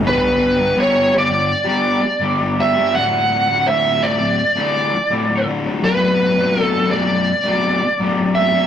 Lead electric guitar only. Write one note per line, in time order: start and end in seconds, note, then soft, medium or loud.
0.07 0.80 B4 loud
0.80 1.12 C#5 medium
1.18 2.65 D5 loud
2.60 2.94 E5 medium
2.95 3.67 F#5 loud
3.68 4.04 E5 loud
4.03 5.44 D5 loud
5.84 6.61 B4 loud
6.61 6.91 A4 loud
6.91 8.41 D5 loud
8.35 8.67 E5 loud